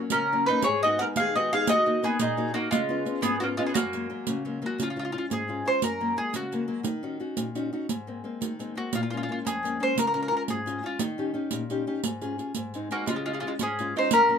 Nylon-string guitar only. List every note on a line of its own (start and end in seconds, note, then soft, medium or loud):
0.00 0.24 F#3 soft
0.00 0.24 A#3 soft
0.00 0.24 C#4 soft
0.13 0.47 C#3 medium
0.33 0.49 F#3 soft
0.33 0.49 A#3 soft
0.33 0.49 C#4 medium
0.50 0.62 F#3 soft
0.50 0.63 A#3 soft
0.50 0.63 C#4 medium
0.67 1.00 G#2 medium
0.84 0.99 G#3 soft
0.84 0.99 B3 soft
0.84 0.99 D#4 soft
1.00 1.28 G#3 soft
1.00 1.28 B3 soft
1.00 1.28 D#4 soft
1.17 1.51 D#3 medium
1.35 1.51 G#3 soft
1.35 1.52 B3 soft
1.35 1.52 D#4 medium
1.52 1.65 G#3 soft
1.52 1.66 B3 soft
1.52 1.66 D#4 medium
1.69 2.02 D#3 medium
1.86 2.02 A#3 soft
1.86 2.02 D#4 soft
1.86 2.02 F#4 medium
2.03 2.31 A#3 soft
2.03 2.31 D#4 soft
2.03 2.31 F#4 soft
2.19 2.53 A#2 medium
2.37 2.53 A#3 medium
2.37 2.53 D#4 soft
2.37 2.53 F#4 medium
2.54 2.67 A#3 medium
2.54 2.67 D#4 medium
2.54 2.68 F#4 medium
2.71 3.05 C#3 medium
2.89 3.04 B3 soft
2.89 3.05 C#4 soft
2.89 3.05 F4 medium
3.05 3.34 B3 soft
3.05 3.34 C#4 soft
3.05 3.34 F4 soft
3.21 3.56 G#2 medium
3.41 3.57 B3 soft
3.41 3.57 C#4 soft
3.41 3.57 F4 medium
3.58 3.71 B3 medium
3.58 3.72 C#4 medium
3.58 3.72 F4 medium
3.75 4.09 F#2 medium
3.94 4.08 F#3 soft
3.94 4.09 G#3 soft
3.94 4.09 A#3 soft
4.10 4.38 F#3 soft
4.10 4.38 G#3 soft
4.10 4.39 A#3 soft
4.28 4.62 C#3 medium
4.45 4.61 F#3 soft
4.45 4.61 G#3 soft
4.45 4.61 A#3 medium
4.62 4.75 F#3 soft
4.62 4.75 G#3 soft
4.62 4.76 A#3 medium
4.78 5.13 C#3 medium
4.96 5.12 G#3 soft
4.96 5.12 C#4 soft
4.96 5.13 F4 soft
5.13 5.42 G#3 soft
5.13 5.42 C#4 soft
5.13 5.42 F4 soft
5.30 5.65 G#2 medium
5.48 5.64 G#3 soft
5.48 5.64 C#4 soft
5.48 5.65 F4 soft
5.65 5.79 G#3 soft
5.65 5.79 C#4 soft
5.65 5.79 F4 soft
5.83 6.17 F#2 medium
6.00 6.15 F#3 soft
6.00 6.16 G#3 soft
6.00 6.15 A#3 medium
6.16 6.45 F#3 soft
6.16 6.45 G#3 soft
6.16 6.45 A#3 soft
6.33 6.68 C#3 medium
6.52 6.67 F#3 soft
6.52 6.67 G#3 soft
6.52 6.66 A#3 medium
6.68 6.82 F#3 medium
6.68 6.82 G#3 soft
6.68 6.82 A#3 medium
6.83 7.19 D#3 medium
7.03 7.18 C#4 soft
7.03 7.20 D#4 soft
7.03 7.19 F#4 soft
7.20 7.48 C#4 soft
7.20 7.49 D#4 soft
7.20 7.49 F#4 soft
7.37 7.71 A#2 medium
7.55 7.71 C#4 soft
7.55 7.71 D#4 soft
7.55 7.72 F#4 medium
7.73 7.86 C#4 soft
7.73 7.86 D#4 soft
7.73 7.86 F#4 medium
7.90 8.24 G#2 medium
8.07 8.23 G#3 soft
8.07 8.23 A#3 soft
8.07 8.24 C4 soft
8.24 8.53 G#3 soft
8.24 8.53 A#3 soft
8.24 8.53 C4 soft
8.41 8.75 D#3 medium
8.59 8.74 G#3 soft
8.59 8.74 A#3 soft
8.59 8.76 C4 soft
8.75 8.89 G#3 soft
8.75 8.89 A#3 soft
8.75 8.90 C4 soft
8.93 9.28 A#2 medium
9.13 9.27 G#3 soft
9.13 9.28 A#3 soft
9.13 9.29 C#4 soft
9.29 9.57 G#3 soft
9.29 9.57 A#3 soft
9.29 9.57 C#4 soft
9.45 9.79 F2 medium
9.63 9.79 G#3 soft
9.63 9.80 A#3 soft
9.63 9.79 C#4 soft
9.80 9.93 G#3 soft
9.80 9.94 A#3 soft
9.80 9.93 C#4 medium
9.95 10.30 C#3 medium
10.14 10.30 G#3 soft
10.14 10.30 C#4 soft
10.14 10.30 F4 soft
10.31 10.59 G#3 soft
10.31 10.59 C#4 soft
10.31 10.59 F4 soft
10.48 10.82 G#2 medium
10.66 10.82 G#3 soft
10.66 10.82 C#4 soft
10.66 10.83 F4 medium
10.83 10.96 G#3 soft
10.83 10.96 C#4 soft
10.83 10.97 F4 medium
11.00 11.34 D#3 medium
11.18 11.33 C#4 soft
11.18 11.33 D#4 soft
11.18 11.33 G4 medium
11.34 11.62 C#4 soft
11.34 11.63 D#4 soft
11.34 11.62 G4 soft
11.52 11.86 A#2 medium
11.70 11.86 C#4 soft
11.70 11.86 D#4 soft
11.70 11.86 G4 medium
11.87 12.00 C#4 soft
11.87 12.00 D#4 soft
11.87 12.00 G4 medium
12.04 12.38 G#2 medium
12.21 12.37 C#4 soft
12.21 12.38 F4 soft
12.21 12.38 G#4 medium
12.38 12.52 C#4 soft
12.38 12.52 F4 soft
12.38 12.52 G#4 soft
12.56 12.90 G#2 medium
12.74 12.90 G#3 soft
12.74 12.90 C4 soft
12.74 12.90 D#4 soft
12.91 13.04 G#3 soft
12.91 13.04 C4 soft
12.91 13.04 D#4 soft
13.07 13.42 C#3 medium
13.26 13.41 G#3 soft
13.26 13.41 C#4 soft
13.26 13.41 F4 soft
13.42 13.71 G#3 soft
13.42 13.70 C#4 soft
13.42 13.71 F4 soft
13.60 13.94 G#2 medium
13.79 13.95 G#3 soft
13.79 13.95 C#4 soft
13.79 13.95 F4 soft
13.96 14.09 G#3 soft
13.96 14.09 C#4 soft
13.96 14.09 F4 medium
14.13 14.38 F#2 medium
14.29 14.38 F#3 soft
14.29 14.38 A#3 soft
14.29 14.38 C#4 soft